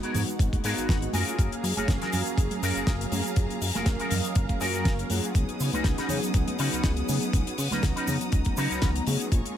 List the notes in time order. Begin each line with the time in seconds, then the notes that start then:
Already playing: G#3 B3 D#4 F#4 F#5
0.03 B3 F#4 G#4 A#4, closed hi-hat
0.14 G#2, open hi-hat, low conga, shaker
0.28 closed hi-hat, shaker
0.39 G#1, muted clean electric guitar stroke, kick, closed hi-hat, shaker
0.53 kick, closed hi-hat, high conga
0.64 G#2 G#3 B3 D#4 F#4 G#4 A#4 F5, open hi-hat, shaker
0.78 G#1, closed hi-hat, shaker
0.89 G#1 F#5, kick, snare, closed hi-hat, low conga, shaker
1.02 closed hi-hat
1.13 F#2 F#3 A#3 C#4 F4 F#4 G#4 A#4 F5 G#5 A#5, open hi-hat, high conga, shaker
1.28 closed hi-hat, shaker
1.38 F#1 F#3 A#3 F5, kick, closed hi-hat, shaker
1.52 closed hi-hat
1.63 F#2, muted clean electric guitar stroke, open hi-hat, shaker
1.76 F#1 F#3 A#3 C#4 F4 F#4 G#4 C#5 F5, closed hi-hat, high conga, shaker
1.88 F#1, kick, snare, closed hi-hat, shaker
2.02 F4 F#4 G#4 A#4, snare, closed hi-hat
2.12 F#2, open hi-hat, low conga, shaker
2.26 closed hi-hat, shaker
2.38 F#1, muted clean electric guitar stroke, kick, closed hi-hat, shaker
2.50 closed hi-hat, high conga
2.62 F#2 F4 F#4 G#4 A#4, open hi-hat, shaker
2.75 F#1, closed hi-hat, shaker
2.87 F#1, kick, snare, closed hi-hat, shaker
3.01 closed hi-hat
3.12 F#2, open hi-hat, high conga, shaker
3.24 muted clean electric guitar stroke, closed hi-hat, shaker
3.36 F#1 F#3 A#3 C#4 F4 G#4, kick, closed hi-hat, shaker
3.50 closed hi-hat
3.61 F#2, muted clean electric guitar stroke, open hi-hat, shaker
3.74 F#1 F#3 A#3 C#4 F4 F#4 G#4 A#4 F5, snare, closed hi-hat, high conga, shaker
3.86 F#1, kick, snare, closed hi-hat, shaker
4.00 F4 F#4 G#4 A#4, closed hi-hat
4.11 F#2 D#5, open hi-hat, low conga, shaker
4.24 closed hi-hat, shaker
4.35 F#1 F5, muted clean electric guitar stroke, kick, closed hi-hat, shaker
4.49 kick, closed hi-hat, high conga
4.60 F#2 F#3 A#3 C#4 F4 F#4 G#4 A#4, open hi-hat, shaker
4.74 F#5, closed hi-hat, shaker
4.85 F#1 F5, kick, snare, closed hi-hat, low conga, shaker
4.99 closed hi-hat
5.10 F#2 F#3 A#3 C#4 F4 G#4 F#5, open hi-hat, high conga, shaker
5.23 muted clean electric guitar stroke, closed hi-hat, shaker
5.35 C#2 F#3 B3 C#4 D#4 F#5 D#6, kick, closed hi-hat, shaker
5.49 closed hi-hat
5.60 C#3, muted clean electric guitar stroke, open hi-hat, shaker
5.73 C#2 F#3 B3 C#4 D#4 F#4 G#4 B4, closed hi-hat, high conga, shaker
5.84 C#2, kick, snare, closed hi-hat, shaker
5.98 C#4 D#4 F#4 B4, snare, closed hi-hat
6.09 C#3, open hi-hat, low conga, shaker
6.23 closed hi-hat, shaker
6.34 C#2, muted clean electric guitar stroke, kick, closed hi-hat, shaker
6.48 closed hi-hat, high conga
6.59 C#3 C#4 D#4 F#4 B4, open hi-hat, shaker
6.73 C#2, closed hi-hat, shaker
6.84 C#2, kick, snare, closed hi-hat, shaker
6.97 closed hi-hat
7.09 C#3, open hi-hat, high conga, shaker
7.21 muted clean electric guitar stroke, closed hi-hat, shaker
7.33 C#2 F#3 B3 C#4 D#4 G#4, kick, closed hi-hat, shaker
7.47 closed hi-hat
7.58 C#3, muted clean electric guitar stroke, open hi-hat, shaker
7.71 C#2 F#3 B3 C#4 D#4 F#4 B4 A#5, snare, closed hi-hat, high conga, shaker
7.83 C#2, kick, snare, closed hi-hat, shaker
7.96 C#4 D#4 F#4 B4, closed hi-hat
8.07 C#3, open hi-hat, low conga, shaker
8.21 closed hi-hat, shaker
8.32 C#2, muted clean electric guitar stroke, kick, closed hi-hat, shaker
8.45 kick, closed hi-hat, high conga
8.57 C#3 F#3 B3 C#4 D#4 F#4 B4 A#5, open hi-hat, shaker
8.71 C#2, closed hi-hat, shaker
8.82 C#2, kick, snare, closed hi-hat, low conga, shaker
8.96 closed hi-hat
9.06 C#3 F#3 B3 C#4 D#4 G#4, open hi-hat, high conga, shaker
9.20 muted clean electric guitar stroke, closed hi-hat, shaker
9.31 A#1 G#3 A#3 C#4 F4 G#4 G#5 A#5 C#6, kick, closed hi-hat, shaker
9.46 closed hi-hat